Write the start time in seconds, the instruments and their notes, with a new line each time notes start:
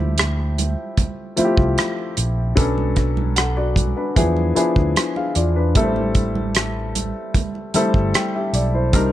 Already playing: fingered electric bass D2, grand piano F3 A3 C4 E4 G4
0.18 cross-stick, closed hi-hat
0.58 closed hi-hat, high conga
0.97 kick, closed hi-hat, high conga, low conga
1.36 grand piano F3 A3 C4 E4 F4, muted fingered electric bass stroke, closed hi-hat
1.45 grand piano G4
1.57 fingered electric bass C2, kick
1.78 cross-stick, closed hi-hat, muted conga
2.17 fingered electric bass A#1, closed hi-hat
2.56 fingered electric bass B1, grand piano F#3 B3 C#4 D4 A4, kick, closed hi-hat, low conga
2.78 muted conga, high conga
2.96 kick, cross-stick, closed hi-hat
3.17 high conga
3.36 grand piano A4 F#5, cross-stick, closed hi-hat, muted conga
3.57 grand piano F#4 D5
3.76 kick, closed hi-hat, high conga
3.97 grand piano D4 B4
4.16 fingered electric bass E2, grand piano F3 B3 D4 E4 G#4, kick, closed hi-hat, muted conga, high conga, low conga
4.36 muted conga
4.55 grand piano F3 B3 D4 E4 G#4, muted fingered electric bass stroke, closed hi-hat
4.76 fingered electric bass D2, kick
4.96 cross-stick, closed hi-hat, muted conga
5.16 grand piano G#4 F5, muted conga
5.35 fingered electric bass E2, grand piano F4 D5, closed hi-hat
5.56 grand piano D4 B4
5.75 fingered electric bass A1, grand piano G3 A3 A#3 E4 A4, kick, closed hi-hat, low conga
5.83 grand piano C4
5.96 muted conga, high conga
6.15 kick, closed hi-hat
6.35 high conga
6.55 cross-stick, closed hi-hat
6.95 closed hi-hat, high conga
7.34 kick, closed hi-hat, muted conga, high conga, low conga
7.55 muted conga
7.74 grand piano G3 A3 C4 E4 A4, muted fingered electric bass stroke, closed hi-hat
7.94 fingered electric bass G1, kick
8.14 grand piano G5, cross-stick, closed hi-hat, muted conga
8.35 grand piano G4 E5
8.53 fingered electric bass B1, grand piano D5, closed hi-hat
8.74 grand piano E4 C5
8.93 fingered electric bass C2, grand piano G3 C4 D4 D#4 A#4, kick, closed hi-hat, muted conga, low conga